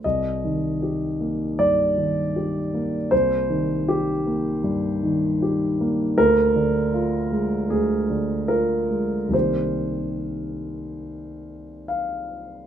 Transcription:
X:1
M:4/4
L:1/8
Q:1/4=78
K:Cm
V:1 name="Grand piano"
e4 d4 | c2 G4- G z | B4 A2 B2 | c6 f2 |]
V:2 name="Grand piano" clef=bass
C,, E, G B, G,, E, G B, | C,, E,2 B, G,, E, G B, | D,, D, F A, D,, D, F A, | [C,,E,B,G]8 |]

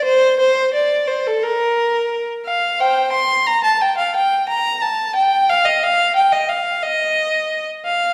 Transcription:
X:1
M:4/4
L:1/16
Q:1/4=88
K:Gm
V:1 name="Violin"
c2 c2 d2 c A B4- B z f2 | [cg]2 c'2 b a g f g2 b2 a2 g2 | f e f2 g e f2 e4- e z f2 |]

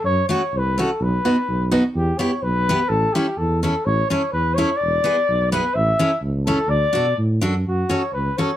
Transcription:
X:1
M:2/4
L:1/8
Q:1/4=126
K:D
V:1 name="Flugelhorn"
c c B A | B3 z | G c B2 | A G A A |
c c B c | d3 B | e2 z A | d2 z2 |
[K:F#m] F c B c |]
V:2 name="Steel-string acoustic guitar"
z [A,CF] z [A,CF] | z [B,^DF] z [B,DF] | z [B,EG] z [B,EG] | z [CEA] z [CEA] |
z [CEA] z [CEA] | z [B,E^G] z [B,EG] | z [CEA] z [CEA] | z [DFA] z [DFA] |
[K:F#m] z [CFA] z [CFA] |]
V:3 name="Tuba" clef=bass
F,, z =C,,2 | B,,, z B,,,2 | E,, z B,,,2 | A,,, z E,,2 |
A,,, z E,,2 | E,,, z B,,,2 | A,,, z C,,2 | D,, B,, A,, F,, |
[K:F#m] F,, z C,, z |]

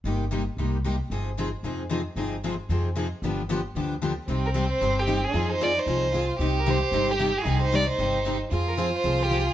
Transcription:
X:1
M:4/4
L:1/8
Q:"Swing" 1/4=227
K:Cm
V:1 name="Violin"
z8 | z8 | z8 | z8 |
z B c c2 G2 A- | A c d c4 z | z B c c2 G2 A- | A c d c4 z |
z B c c2 G2 A |]
V:2 name="Violin"
z8 | z8 | z8 | z8 |
C8 | E6 F2 | G8 | E6- E z |
F8 |]
V:3 name="Steel-string acoustic guitar"
[C,G,B,EG] z [C,G,B,EG] z [C,G,B,EG] z [C,G,B,EG] z | [C,F,CEA] z [C,F,CEA] z [C,F,CEA] z [C,F,CEA] z | [C,F,CEA] z [C,F,CEA] z [C,F,CEA] z [C,F,CEA] z | [D,F,=B,DG] z [D,F,B,DG] z [D,F,B,DG] z [D,F,B,DG] z |
[C,G,CEG] z [C,G,CEG] z [C,G,CEG] z [C,G,CEG] z | [F,CFA] z [F,CFA] z [F,CFA] z [F,CFA] z | [C,G,CEG] z [C,G,CEG] z [C,G,CEG] z [C,G,CEG] z | [C,G,CEG] z [C,G,CEG] z [C,G,CEG] z [C,G,CEG] z |
[F,CFA] z [F,CFA] z [F,CFA] z [F,CFA] z |]
V:4 name="Steel-string acoustic guitar"
[C,G,B,EG] z [C,G,B,EG] z [C,G,B,EG] z [C,G,B,EG] z | [C,F,CEA] z [C,F,CEA] z [C,F,CEA] z [C,F,CEA] z | [C,F,CEA] z [C,F,CEA] z [C,F,CEA] z [C,F,CEA] z | [D,F,=B,DG] z [D,F,B,DG] z [D,F,B,DG] z [D,F,B,DG] z |
[C,G,CEG] z [C,G,CEG] z [C,G,CEG] z [C,G,CEG] z | [F,CFA] z [F,CFA] z [F,CFA] z [F,CFA] z | [C,G,CEG] z [C,G,CEG] z [C,G,CEG] z [C,G,CEG] z | [C,G,CEG] z [C,G,CEG] z [C,G,CEG] z [C,G,CEG] z |
[F,CFA] z [F,CFA] z [F,CFA] z [F,CFA] z |]
V:5 name="Upright bass" clef=bass
G,,,4 C,,4 | G,,,4 F,,4 | G,,,4 F,,4 | G,,,4 D,,4 |
C,,4 G,,,4 | F,,4 C,,4 | C,,4 G,,,4 | C,,4 G,,,4 |
F,,4 C,,4 |]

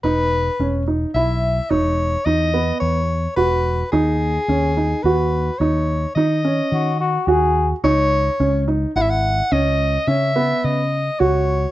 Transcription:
X:1
M:7/4
L:1/16
Q:1/4=108
K:G#phr
V:1 name="Soprano saxophone"
B6 z2 e4 c4 d4 c4 B4 | G8 B4 c4 d8 z4 | c6 z2 f/2 e/2 f3 d4 e4 d4 c4 |]
V:2 name="Trombone"
z24 z4 | z16 z4 F2 F2 G3 z | z24 z4 |]
V:3 name="Grand piano"
D4 C2 D2 E4 D4 D2 B,4 z2 F4 | D4 C2 D2 F4 D4 D2 C4 z2 F4 | D4 C2 D2 E4 C4 C2 B,4 z2 F4 |]
V:4 name="Fretless electric bass" clef=bass
E,,,4 E,,,4 B,,,4 E,,,4 E,,4 E,,4 E,,,4 | D,,4 D,,4 D,,4 D,,4 D,4 D,4 D,,4 | C,,4 C,,4 G,,,4 C,,4 C,4 C,4 C,,4 |]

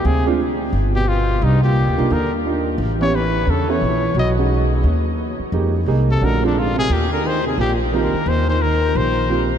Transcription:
X:1
M:4/4
L:1/8
Q:"Swing" 1/4=175
K:Eb
V:1 name="Trumpet"
A z4 G F2 | E G3 B z3 | z ^c =B2 =A c3 | ^d z6 z |
z3 =A B D F _A | G B c A G z B2 | c c B2 c3 z |]
V:2 name="Grand piano"
z [A,CDF] z6 | z3 [B,DEF] z2 [B,DEF]2 | z [=B,^C=EG] z3 [B,CE=A] z2 | z [^G,^C^D^F]3 z4 |
[A,B,EG] z [A,B,EA] z [=A,_DE_G] [_A,C=DF]2 z | z6 [G,B,CF] z | z6 [G,B,CF] z |]
V:3 name="Trombone" clef=bass
C, z4 =B,, B,,2 | G,, B,,3 D, z3 | z =E, E,2 ^C, E,3 | ^F, z6 z |
z3 C, D, F,, A,, C, | B,, D, E, C, B,, z E,2 | E, E, E,2 E,3 z |]
V:4 name="Upright bass" clef=bass
D,,4 G,,,4 | C,,2- (3C,, D,, _C,, E,,4 | =A,,,4 =E,,2 B,,,2 | =B,,,4 ^D,,3 z |
F,,2 C,,2 B,,,4 | E,,4 B,,,3 z | E,,4 B,,,4 |]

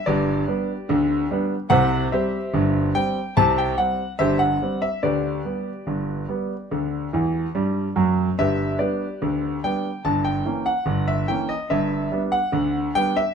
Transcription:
X:1
M:2/4
L:1/16
Q:1/4=72
K:G
V:1 name="Grand piano"
[GBd]8 | [cf]2 [Gce]4 g2 | a g f2 [Gce] f2 e | [GBd]8- |
[GBd]4 z4 | [GBe]2 [GBd]4 g2 | a g2 f2 e g _e | e3 f3 g e |]
V:2 name="Grand piano" clef=bass
[G,,,G,,]2 [G,B,D]2 [D,,D,]2 [G,B,D]2 | [C,,C,]2 [G,C]2 [G,,,G,,]2 [G,C]2 | [C,,C,]2 [G,C]2 [G,,,G,,]2 [G,C]2 | [D,,D,]2 [G,B,]2 [G,,,G,,]2 [G,B,]2 |
[D,,D,]2 [E,,E,]2 [G,,G,]2 [F,,F,]2 | [G,,,G,,]2 [G,B,D]2 [D,,D,]2 [G,B,D]2 | [G,,,G,,]2 [E,_B,_D]2 [G,,,G,,]2 [E,B,D]2 | [G,,,G,,]2 [G,B,D]2 [D,,D,]2 [G,B,D]2 |]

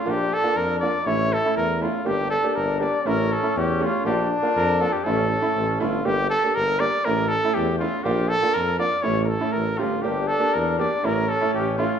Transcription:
X:1
M:2/4
L:1/16
Q:1/4=120
K:none
V:1 name="Cornet"
G2 A2 _B2 d2 | ^c2 A2 _B2 F2 | G2 A2 _B2 d2 | _B2 A2 G2 F2 |
G2 z2 _B2 A G | A6 F2 | G2 A2 _B2 d2 | _B2 A2 G2 F2 |
G2 A2 _B2 d2 | ^c3/2 _B/2 A2 B2 F2 | G2 A2 _B2 d2 | _B2 A2 G2 F2 |]
V:2 name="Trombone"
D8 | E6 z2 | D8 | ^C8 |
D8 | ^C4 C4 | z8 | z8 |
z8 | z8 | D8 | ^C8 |]
V:3 name="Upright piano"
[_B,DF]2 z [B,DF] z2 [B,DF] z | [A,^CE]2 z [A,CE] z2 [A,CE] z | [_B,DG]2 z [B,DG] z2 [B,DG] z | [A,^CE]2 z [A,CE] z2 [A,CG] z |
[_B,DF]2 z [B,DF] z2 [B,DF] z | [A,^CE]2 z [A,CE] z2 [A,CE] z | [_B,DG]2 z [B,DG] z2 [B,DG] z | [A,^CE]2 z [A,CE] z2 [A,CE] z |
[_B,DF]2 z [B,DF] z2 [B,DF] z | [A,^CE]2 z [A,CE] z2 [A,CG] z | [_B,DG]2 z [B,DG] z2 [B,DG] z | [A,^CE]2 z [A,CE] z2 [A,CE] z |]
V:4 name="Tuba" clef=bass
_B,,,4 F,,4 | A,,,4 E,,4 | G,,,4 G,,,4 | A,,,4 E,,4 |
_B,,,4 F,,4 | A,,,4 A,,,2 G,,,2 | G,,,4 G,,,4 | A,,,4 E,,4 |
_B,,,4 F,,4 | A,,,4 A,,,2 G,,,2 | G,,,4 E,,4 | A,,,4 A,,,4 |]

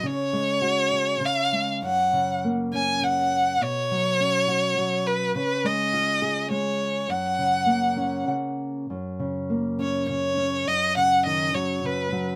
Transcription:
X:1
M:3/4
L:1/16
Q:1/4=102
K:F#
V:1 name="Violin"
c8 e3 z | f4 z2 g2 f4 | c8- c2 B2 | B2 d6 c4 |
f8 z4 | z6 c2 c4 | d2 f2 d2 c2 B3 z |]
V:2 name="Nylon-string guitar" clef=bass
C,2 G,2 F2 G2 C,2 G,2 | F,,2 C,2 A,2 C2 C,4 | B,,2 F,2 C2 F2 F,4 | C,2 G,2 E2 G2 G,4 |
F,,2 C,2 A,2 [Cc]2 [C,f]4 | F,,2 C,2 A,2 C2 C,2 C2 | F,,2 C,2 D,2 F,2 C,2 F,2 |]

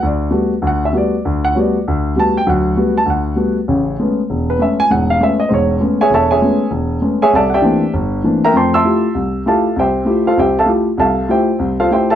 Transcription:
X:1
M:4/4
L:1/8
Q:"Swing" 1/4=197
K:G
V:1 name="Grand piano"
d3 z f e d2- | d f [^cd]3 z a g | f3 a f3 z | z4 z B e ^g |
f =f e _e [c^c]2 z [^Gc=e^g] | [A^cea] [^Gce^g]3 z3 [Gceg] | [Adea] [Gdefg]3 z3 [_Beg_b] | [K:F] [cgac'] [eac'e']3 z2 [Aefa]2 |
[Gceg]3 [FAcf] [Gceg] [Aefa] z2 | [Aefa]2 [ceg]3 [FAcf] [ceg] [Aefa] |]
V:2 name="Grand piano"
D,,2 [G,A,B,F] z D,,2 [G,A,B,F] z | D,,2 [G,A,B,F] z D,,2 [G,A,B,F] z | [D,,F,]2 [G,A,B,F] z D,,2 [G,A,B,F] z | [A,,,^C,]2 [^G,A,B,^C] z E,,,2 [G,A,B,C] z |
[E,,,^G,,]2 [^G,A,B,^C] z [E,,,G,,]2 [G,A,B,C] z | E,,,2 [^G,A,B,^C] z E,,,2 [G,A,B,C] z | C,,2 [E,A,_B,CD] z G,,,2 [E,A,B,CD] z | [K:F] [F,,A,]2 [A,EFG] z C,,2 [A,EFG] z |
C,,2 [A,EFG] z C,,2 [A,EFG] z | C,,2 [A,EFG] z C,,2 [A,EFG] z |]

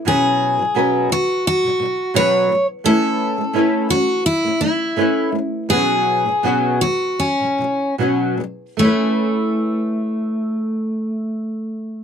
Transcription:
X:1
M:4/4
L:1/16
Q:"Swing 16ths" 1/4=82
K:A
V:1 name="Steel-string acoustic guitar"
G6 F2 F4 c3 z | A6 F2 E2 E4 z2 | G6 F2 C4 z4 | A,16 |]
V:2 name="Nylon-string guitar"
[B,,F,CFB]3 [B,,F,] [B,,F,CFB]2 [B,,F,]2 z [B,,F,] [B,,F,]2 [B,,F,CFB]2 [B,,F,]2 | [A,CEB]3 [A,C] [A,CEB]2 [A,C]2 z [A,C] [A,C]2 [A,CEB]2 [A,C]2 | [B,,F,B,CF]3 [B,,F,] [B,,F,B,CF]2 [B,,F,]2 z [B,,F,] [B,,F,]2 [B,,F,B,CF]2 [B,,F,]2 | [A,CEB]16 |]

